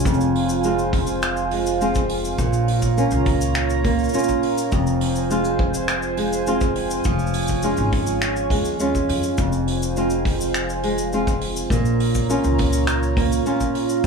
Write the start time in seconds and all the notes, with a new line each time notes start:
Already playing: F3 G#3 C#4 F4 G#5
0.05 F1 F2 C5, kick, cabasa
0.14 cabasa
0.21 cabasa
0.35 open hi-hat
0.49 cabasa
0.64 G#3 C4 F4, cabasa
0.79 cabasa
0.93 kick, open hi-hat
1.07 cabasa
1.22 finger snap, cabasa
1.37 cabasa
1.51 G#3, open hi-hat
1.66 cabasa
1.81 G#3 C4 F4, cabasa
1.95 kick, cabasa
2.09 open hi-hat
2.25 cabasa
2.38 A#1 A#2 C#5 A#5, kick, cabasa
2.53 cabasa
2.68 open hi-hat
2.82 kick, cabasa
2.97 A#3 C#4 F4, cabasa
3.11 C#2, cabasa
3.26 kick, open hi-hat
3.41 cabasa
3.55 finger snap, cabasa
3.70 cabasa
3.84 A#3, kick, open hi-hat
3.99 cabasa
4.04 cabasa
4.09 cabasa
4.14 A#3 C#4 F4, cabasa
4.18 cabasa
4.23 cabasa
4.28 kick, cabasa
4.43 open hi-hat
4.58 cabasa
4.71 F1 F2 C5 G#5, kick, cabasa
4.87 cabasa
5.01 open hi-hat
5.16 cabasa
5.30 G#3 C4 F4, cabasa
5.45 cabasa
5.59 kick
5.74 cabasa
5.88 finger snap, cabasa
6.02 cabasa
6.17 G#3, open hi-hat
6.33 cabasa
6.47 G#3 C4 F4, cabasa
6.61 kick, cabasa
6.75 open hi-hat
6.91 cabasa
7.04 F1 F3 F4 C#5, kick, cabasa
7.19 cabasa
7.26 cabasa
7.34 open hi-hat, cabasa
7.41 cabasa
7.48 kick, cabasa
7.62 G#3 C#4 F4, cabasa
7.77 G#1, cabasa
7.92 kick, open hi-hat
8.07 cabasa
8.22 finger snap, cabasa
8.36 cabasa
8.50 D#2 G#3, kick, open hi-hat
8.65 cabasa
8.80 G#3 C#4 F4, cabasa
8.95 kick, cabasa
9.09 F2, open hi-hat
9.23 cabasa
9.38 F1 F2 C5, kick, cabasa
9.52 cabasa
9.67 open hi-hat
9.82 cabasa
9.96 G#3 C4 F4, cabasa
10.10 cabasa
10.25 kick, open hi-hat
10.41 cabasa
10.54 finger snap, cabasa
10.70 cabasa
10.83 G#3, open hi-hat
10.98 cabasa
11.13 G#3 C4 F4, cabasa
11.27 kick, cabasa
11.41 open hi-hat
11.56 cabasa
11.70 A#1 A#2 C#5 A#5, kick, cabasa
11.85 cabasa
12.00 open hi-hat
12.14 kick, cabasa
12.29 A#3 C#4 F4, cabasa
12.44 C#2, cabasa
12.58 kick, open hi-hat
12.73 cabasa
12.87 finger snap, cabasa
13.03 cabasa
13.17 A#3, kick, open hi-hat
13.32 cabasa
13.46 A#3 C#4 F4, cabasa
13.60 kick, cabasa
13.75 open hi-hat
13.89 cabasa